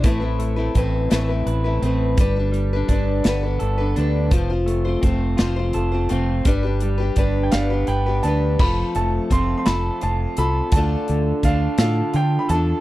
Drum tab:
CC |------|------|------|------|
HH |xxxxxx|xxxxxx|xxxxxx|xxxxxx|
SD |---o--|---o--|---o--|---o--|
BD |o-o---|o-o---|o-o---|o-o---|

CC |x-----|------|
HH |-xxxxx|xxxxxx|
SD |---o--|---o--|
BD |o-o---|o-o---|